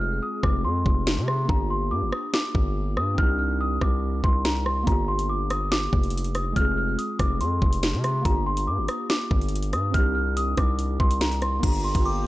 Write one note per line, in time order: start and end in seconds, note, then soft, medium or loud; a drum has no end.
0.00 0.21 F1 loud
0.00 1.44 G#3 medium
0.00 1.45 C4 medium
0.00 1.46 F4 medium
0.00 1.48 G#4 medium
0.00 0.18 F6 medium
0.23 0.39 D#6 medium
0.43 0.66 F1 loud
0.43 0.60 D6 medium
0.43 kick loud
0.43 cross-stick loud
0.65 0.85 F2 loud
0.65 1.24 C6 medium
0.86 1.19 F1 loud
0.86 kick medium
1.07 snare loud
1.17 1.48 C3 loud
1.28 1.45 C6 medium
1.28 cross-stick medium
1.45 1.93 G1 loud
1.45 3.13 A#3 medium
1.45 3.14 D4 medium
1.45 kick loud
1.49 3.15 F4 medium
1.49 3.17 G4 medium
1.49 1.66 A#5 loud
1.70 1.87 C6 medium
1.91 2.03 G2 loud
1.91 2.08 D6 medium
2.02 2.12 G1 loud
2.12 2.29 D#6 medium
2.12 cross-stick loud
2.34 2.93 D6 medium
2.34 snare loud
2.55 2.98 G1 loud
2.55 kick medium
2.97 3.17 G2 loud
2.97 3.14 D#6 medium
2.97 cross-stick medium
3.14 3.79 C2 loud
3.14 4.82 C4 medium
3.14 4.83 D4 medium
3.14 kick loud
3.18 4.84 D#4 medium
3.18 4.86 G4 medium
3.18 3.35 F6 loud
3.39 3.56 F6 medium
3.61 3.78 D#6 medium
3.81 4.22 C2 loud
3.81 4.21 D6 medium
3.81 kick loud
3.81 cross-stick medium
4.24 4.85 C2 loud
4.24 4.41 C6 medium
4.24 kick medium
4.45 4.62 A#5 medium
4.45 snare loud
4.66 4.83 C6 medium
4.66 cross-stick medium
4.83 6.51 A#3 medium
4.83 6.52 D4 medium
4.87 5.89 G1 loud
4.87 6.53 F4 medium
4.87 6.55 G4 medium
4.87 5.04 A#5 loud
4.87 kick loud
4.87 closed hi-hat medium
5.08 5.25 C6 medium
5.19 closed hi-hat medium
5.29 5.46 D6 medium
5.50 5.67 D#6 medium
5.50 cross-stick loud
5.50 closed hi-hat medium
5.71 6.31 D6 loud
5.71 snare loud
5.93 6.54 F1 loud
5.93 kick medium
6.03 closed hi-hat soft
6.10 closed hi-hat medium
6.17 closed hi-hat medium
6.25 closed hi-hat medium
6.35 6.52 D#6 medium
6.35 cross-stick medium
6.35 closed hi-hat medium
6.52 6.97 F1 loud
6.52 8.20 G#3 medium
6.52 8.21 C4 medium
6.52 6.73 F6 loud
6.52 kick loud
6.52 closed hi-hat medium
6.58 8.23 F4 medium
6.58 8.24 G#4 medium
6.77 6.94 F6 medium
6.98 7.15 D#6 medium
6.98 closed hi-hat medium
7.19 7.42 F1 loud
7.19 7.36 D6 medium
7.19 kick medium
7.19 cross-stick loud
7.19 closed hi-hat medium
7.41 7.61 F2 loud
7.41 8.00 C6 medium
7.41 closed hi-hat medium
7.62 7.95 F1 loud
7.62 kick loud
7.73 closed hi-hat medium
7.83 snare loud
7.83 closed hi-hat medium
7.94 8.24 C3 loud
8.04 8.21 C6 medium
8.04 cross-stick medium
8.04 closed hi-hat medium
8.21 8.69 G1 loud
8.21 9.89 A#3 medium
8.21 9.90 D4 medium
8.21 kick loud
8.21 closed hi-hat medium
8.25 9.92 F4 medium
8.25 9.93 G4 medium
8.25 8.42 A#5 loud
8.46 8.63 C6 medium
8.57 closed hi-hat medium
8.67 8.80 G2 loud
8.67 8.84 D6 medium
8.78 8.88 G1 loud
8.88 9.06 D#6 medium
8.88 cross-stick loud
8.88 closed hi-hat medium
9.10 9.69 D6 medium
9.10 snare loud
9.31 9.75 G1 loud
9.31 kick medium
9.41 closed hi-hat soft
9.49 closed hi-hat medium
9.56 closed hi-hat medium
9.63 closed hi-hat medium
9.73 9.93 G2 loud
9.73 9.90 D#6 medium
9.73 cross-stick medium
9.73 closed hi-hat medium
9.90 10.55 C2 loud
9.90 11.58 C4 medium
9.90 11.59 D4 medium
9.90 10.11 F6 loud
9.90 kick loud
9.90 closed hi-hat medium
9.96 11.61 D#4 medium
9.96 11.62 G4 medium
10.15 10.32 F6 medium
10.37 10.54 D#6 medium
10.37 closed hi-hat medium
10.57 10.98 C2 loud
10.57 10.97 D6 medium
10.57 kick medium
10.57 cross-stick loud
10.57 closed hi-hat medium
10.79 closed hi-hat medium
11.00 11.61 C2 loud
11.00 11.17 C6 medium
11.00 kick loud
11.11 closed hi-hat medium
11.21 11.38 A#5 medium
11.21 snare loud
11.21 closed hi-hat medium
11.32 closed hi-hat medium
11.42 11.59 C6 medium
11.42 cross-stick medium
11.42 closed hi-hat medium
11.59 11.94 G1 loud
11.59 12.27 A#3 medium
11.59 12.27 D4 medium
11.59 12.03 A#5 loud
11.59 kick loud
11.59 closed hi-hat medium
11.59 crash loud
11.63 12.27 F4 medium
11.63 12.27 G4 medium
11.63 12.27 A#4 medium
11.63 12.27 G5 medium
11.63 11.80 A#5 loud
11.84 12.01 C6 medium
11.95 12.25 G1 loud
11.95 kick medium
11.95 closed hi-hat medium
12.06 12.27 C6 medium
12.06 12.22 D6 medium